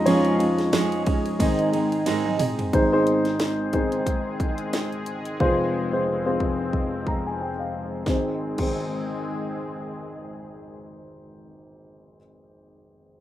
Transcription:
Already playing: F2 F3 G#3 C#4 D#4 F4 G#4 D#5
0.06 F3 G#3 C#4 G#4 C#5, ride
0.25 ride
0.39 G#3 C#4 G#4, ride
0.58 snare, ride
0.72 F3 G#3 C#4 G#4, snare, ride
0.92 ride
1.05 G#3 C#4 G#4, kick, ride
1.26 ride
1.39 G#2 D#3 G#3 C4 D#4 G#4, kick, ride
1.59 ride
1.72 G#3 C4 D#4 G#4, ride
1.92 ride
2.06 G#2 D#3 G#3 C4 D#4 G#4, snare, ride
2.25 high tom
2.39 G#3 C4 D#4 G#4, mid tom, open hi-hat, ride
2.59 floor tom, ride
2.73 G#1 G#2 D#3 G#3 C4 D#4 G#4 C5, kick, closed hi-hat
2.92 C4 D#4 G#4 C5
3.07 closed hi-hat
3.25 snare, closed hi-hat
3.40 snare, closed hi-hat
3.73 C4 D#4 G#4 C5, kick, closed hi-hat
3.92 closed hi-hat
4.06 kick, closed hi-hat
4.40 kick, closed hi-hat
4.58 closed hi-hat
4.73 snare, closed hi-hat
4.92 closed hi-hat
5.06 closed hi-hat
5.25 closed hi-hat
5.40 F1 F2 F3 C4 F4 G#4 C5, kick
5.92 C4 F4 G#4 C5
6.25 C4 F4 G#4 C5
6.40 kick
6.73 kick
7.07 A#5, kick
7.27 G#5
7.41 G5
7.59 F5
8.06 G#1 D#3 G#3 C4 D#4 G#4 C5, kick, snare
8.57 G#1 C4 D#4 G#4, kick, crash
8.62 C5

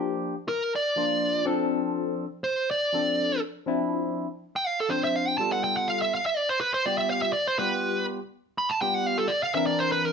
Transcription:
Already playing: F3 A#3 D4 G4
0.48 A#4
0.75 D5
0.96 F3 A#3 D4 F4
1.45 F3 C4 D4 A4
2.44 C5
2.71 D5
2.92 F3 C4 D4 A4
3.66 F3 C4 D4 E4
4.56 G5
4.67 F5
4.80 A4
4.89 F3 C4 D4 C5
5.04 E5
5.16 F5
5.28 G5
5.38 G3 B3 F4 A4 A5
5.52 F#5
5.64 G5
5.77 F#5
5.88 F5
6.02 E5
6.15 F5
6.26 E5
6.37 D5
6.49 C5
6.61 B4
6.74 C5
6.86 G3 B3 F4 G4 D5
6.98 E5
7.10 F5
7.22 E5
7.33 D5
7.48 C5
7.59 G3 B3 F4 G4 B4
8.58 B5
8.69 A5
8.81 G3 B3 F4 G4 G5
8.94 F#5
9.06 F5
9.18 A4
9.28 D5
9.43 F5
9.54 E3 C4 D4 A#4 E5
9.66 D5
9.79 C5
9.92 B4
10.05 A#4

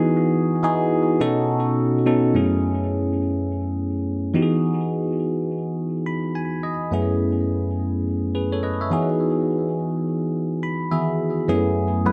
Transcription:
Already playing: E3 B3 D#4 F#4 G#4
0.63 E3 B3 D#4 F#4 G#4
1.20 B2 C#4 D#4 F#4 A4
2.06 B2 C#4 D#4 F#4 A4
2.34 F#2 A3 B3 C#4 E4 G#4
4.34 E3 B3 D#4 F#4 G4
4.42 G#4
6.06 B5
6.35 G#5
6.63 D#5
6.91 F#2 A3 B3 C#4 E4 G#4
8.35 G#4 B4
8.52 A4 C#5
8.63 B4 D#5
8.81 C#5 E5
8.90 E3 B3 D#4 F#4 G#4
10.63 B5
10.91 D#3 E3 B3 F#4 G#4 E5
11.48 F#2 G#3 B3 C#4 E4 G#4
11.55 A3
12.05 F#2 A3 B3 C#4 E4 B4

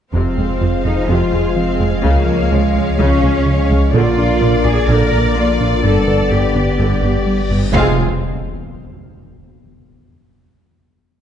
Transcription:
0.11 F1 F2 C3 F3 G#3 C4 F4 G#4 C5 F5
0.37 F2 G#3
0.61 F2 F3 F4
0.84 F2 G#3 D#4 F4
1.08 F2 C3 F3 F4
1.32 F2 G#3 F4
1.56 F3 C4
1.79 F2 G#3
1.92 C4
2.03 C#2 C#3 A#3 C#5
2.27 C#2 F3 G#3
2.51 C#2 F3 G#3 C#4
2.74 C#2 G#3 C#4
2.98 C#2 C#3 C#4
3.22 C#2 G#3 C#4
3.46 C#3
3.70 C#2 F3 G#3
3.93 A#1 A#2 D3 A#3 D4 F4 A#4 D5
4.17 A#1 A#2 A#3 D4
4.41 A#1 A#2 F3 A#4
4.64 A#1 A#2 A#3 G#4 A#4
4.88 A#1 A#2 D3 A#3 A#4
5.12 A#1 A#2 A#3 A#4
5.35 A#3 F4
5.60 A#1 A#2 A#3 D4
5.82 G1 G2 D3 G3 B3 A4 B4, reverse cymbal
6.07 G1 G2 B3
6.30 G1 G2 G3 G4
6.55 G1 G2 B3 G4
6.79 G1 G2 D3 G3
7.03 G1 G2 B3 G4
7.26 G3
7.50 G1 G2 B3
7.73 F1 C3 G#3 C4 F4 G#4 C5 F5, impact

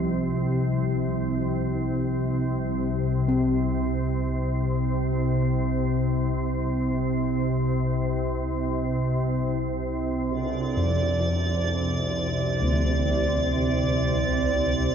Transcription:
Already playing: C2 D2 C3 F3
3.28 C4
10.27 C2 C3
10.31 D5, tam-tam
10.77 F2
12.62 D2

